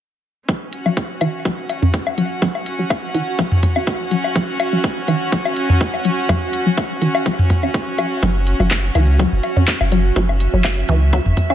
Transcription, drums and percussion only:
0.49 kick
0.73 open hi-hat
0.86 low woodblock
0.97 kick
1.21 open hi-hat, low woodblock
1.45 kick
1.69 open hi-hat, low woodblock
1.82 mid tom
1.94 kick
2.07 low woodblock
2.18 open hi-hat
2.42 kick
2.55 low woodblock
2.66 open hi-hat
2.90 kick, low woodblock
3.15 open hi-hat
3.39 kick, low woodblock
3.52 mid tom
3.63 kick, mid tom, open hi-hat
3.76 low woodblock
3.87 kick
4.11 open hi-hat
4.24 low woodblock
4.36 kick
4.60 open hi-hat, low woodblock
4.84 kick
5.08 open hi-hat, low woodblock
5.32 kick
5.45 low woodblock
5.57 open hi-hat
5.70 mid tom
5.81 kick
5.94 low woodblock
6.05 open hi-hat
6.29 kick, mid tom, low woodblock
6.53 open hi-hat
6.77 kick, low woodblock
7.02 open hi-hat
7.15 low woodblock
7.26 kick
7.39 mid tom
7.50 kick, mid tom, open hi-hat
7.63 low woodblock
7.74 kick
7.98 open hi-hat, low woodblock
8.23 kick
8.47 open hi-hat
8.60 low woodblock
8.71 kick, clap
8.95 open hi-hat, low woodblock
9.19 kick
9.43 open hi-hat, low woodblock
9.56 mid tom
9.68 kick, clap
9.81 low woodblock
9.92 open hi-hat
10.16 kick
10.29 low woodblock
10.40 open hi-hat
10.64 kick, clap, low woodblock
10.89 open hi-hat
11.13 kick, low woodblock
11.26 mid tom
11.37 kick, mid tom, open hi-hat
11.50 low woodblock

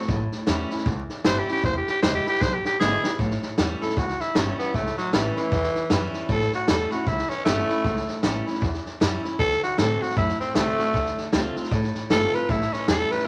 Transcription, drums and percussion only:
0.01 snare
0.08 kick, snare
0.32 snare
0.47 snare, hi-hat pedal
0.70 snare
0.78 snare
0.86 kick, snare
1.09 snare
1.24 snare, hi-hat pedal
1.48 snare
1.56 snare
1.64 kick, snare
1.87 snare
2.03 snare, hi-hat pedal
2.26 snare
2.34 snare
2.41 kick, snare
2.65 snare
2.81 snare, hi-hat pedal
3.04 snare
3.19 kick, snare
3.31 snare
3.42 snare
3.58 snare, hi-hat pedal
3.81 snare
3.89 snare
3.97 kick, snare
4.09 snare
4.20 snare
4.35 snare, hi-hat pedal
4.59 snare
4.74 kick, snare
4.86 snare
4.98 snare
5.13 snare, hi-hat pedal
5.37 snare
5.52 kick, snare
5.63 snare
5.75 snare
5.90 snare, hi-hat pedal
6.13 snare
6.29 kick, snare
6.40 snare
6.52 snare
6.68 snare, hi-hat pedal
6.91 snare
7.06 kick, snare
7.18 snare
7.30 snare
7.46 snare, hi-hat pedal
7.69 snare
7.84 kick, snare
7.96 snare
8.08 snare
8.23 snare, hi-hat pedal
8.47 snare
8.54 snare
8.62 kick, snare
8.74 snare
8.86 snare
9.01 snare, hi-hat pedal
9.24 snare
9.39 kick, snare
9.51 snare
9.63 snare
9.78 snare, hi-hat pedal
10.02 snare
10.10 snare
10.17 kick, snare
10.29 snare
10.41 snare
10.55 snare, hi-hat pedal
10.79 snare
10.94 kick, snare
11.06 snare
11.18 snare
11.33 snare, hi-hat pedal
11.56 snare
11.64 snare
11.71 kick, snare
11.83 snare
11.95 snare
12.10 snare, hi-hat pedal
12.34 snare
12.49 kick, snare
12.61 snare
12.73 snare
12.88 snare, hi-hat pedal
13.11 snare
13.19 snare

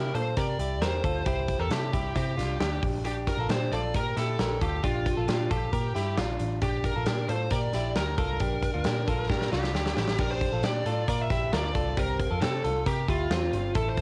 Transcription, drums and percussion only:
0.15 closed hi-hat
0.37 kick, closed hi-hat
0.59 closed hi-hat
0.82 snare, closed hi-hat
1.04 kick, closed hi-hat
1.26 kick, closed hi-hat
1.48 kick, closed hi-hat
1.71 snare, closed hi-hat
1.93 kick, closed hi-hat
2.16 kick, closed hi-hat
2.39 snare, closed hi-hat
2.61 snare, closed hi-hat
2.83 kick, open hi-hat
3.05 closed hi-hat
3.27 kick, closed hi-hat
3.49 snare, closed hi-hat
3.72 closed hi-hat
3.94 kick, closed hi-hat
4.17 snare, closed hi-hat
4.39 snare, closed hi-hat
4.61 kick, closed hi-hat
4.84 kick, closed hi-hat
5.06 kick, closed hi-hat
5.28 snare, closed hi-hat
5.51 kick, closed hi-hat
5.73 kick, closed hi-hat
5.96 snare, closed hi-hat
6.18 snare, closed hi-hat
6.40 closed hi-hat
6.62 kick, closed hi-hat
6.84 kick, closed hi-hat
7.06 snare, closed hi-hat
7.29 closed hi-hat
7.51 kick, closed hi-hat
7.73 snare, closed hi-hat
7.96 snare, closed hi-hat
8.18 kick, closed hi-hat
8.40 kick, closed hi-hat
8.63 kick, closed hi-hat
8.84 snare, closed hi-hat
9.08 kick, closed hi-hat
9.30 kick, snare
9.41 snare
9.53 snare
9.64 snare
9.75 snare
9.86 snare
9.97 snare
10.08 snare
10.18 kick, crash
10.41 kick, closed hi-hat
10.63 snare, closed hi-hat
10.86 closed hi-hat
11.08 kick, closed hi-hat
11.30 kick, snare, closed hi-hat
11.53 snare, closed hi-hat
11.75 kick, closed hi-hat
11.97 kick, closed hi-hat
12.20 kick, closed hi-hat
12.42 snare, closed hi-hat
12.65 closed hi-hat
12.86 kick, closed hi-hat
13.08 kick, closed hi-hat
13.31 snare, closed hi-hat
13.53 closed hi-hat
13.75 kick, closed hi-hat
13.97 kick, closed hi-hat

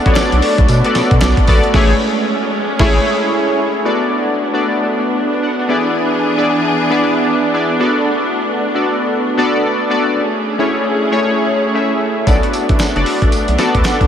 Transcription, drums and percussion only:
0.06 kick, closed hi-hat
0.16 snare, clap, closed hi-hat, tambourine
0.32 closed hi-hat
0.42 open hi-hat
0.58 kick, closed hi-hat
0.68 closed hi-hat, tambourine
0.84 closed hi-hat
0.95 snare, closed hi-hat, tambourine
1.11 kick, closed hi-hat
1.21 snare, clap, closed hi-hat, tambourine
1.37 kick, closed hi-hat
1.47 kick, open hi-hat, tambourine
1.63 closed hi-hat
1.74 kick, snare, crash
2.79 kick, snare, crash
12.27 kick, closed hi-hat, tambourine
12.43 closed hi-hat
12.53 closed hi-hat, tambourine
12.69 kick, closed hi-hat
12.80 snare, clap, closed hi-hat, tambourine
12.96 closed hi-hat
13.06 open hi-hat
13.22 kick, closed hi-hat
13.32 closed hi-hat, tambourine
13.48 closed hi-hat
13.58 snare, closed hi-hat, tambourine
13.75 kick, closed hi-hat
13.85 snare, clap, closed hi-hat, tambourine
14.01 kick, closed hi-hat

